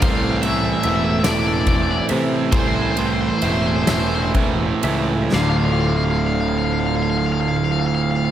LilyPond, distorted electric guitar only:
\new Staff \with { instrumentName = "Distorted electric guitar" } { \clef bass \time 6/8 \key d \minor \tempo 4. = 43 <a, e a>8 <a, e a>8 <a, e a>8 <a, e a>8 <a, e a>8 <a, e a>8 | <a, e a>8 <a, e a>8 <a, e a>8 <a, e a>8 <a, e a>8 <a, e a>8 | <d, a, d>2. | }